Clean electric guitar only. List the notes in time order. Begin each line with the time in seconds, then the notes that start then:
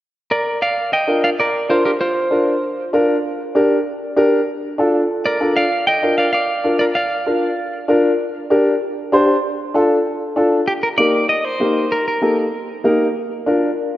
0.31 A#4 D5
0.62 D5 F5
0.93 D#5 G5
1.24 D5 F5
1.40 A#4 D5
1.70 F4 C5
1.85 G4 A#4
2.01 F4 C5
5.26 A#4 D5
5.57 D5 F5
5.87 D#5 G5
6.18 D5 F5
6.33 D5 F5
6.79 A#4 D5
6.95 D5 F5
10.68 G4
10.83 A#4
10.98 D5
11.29 D#5
11.45 C5
11.92 A#4
12.08 A#4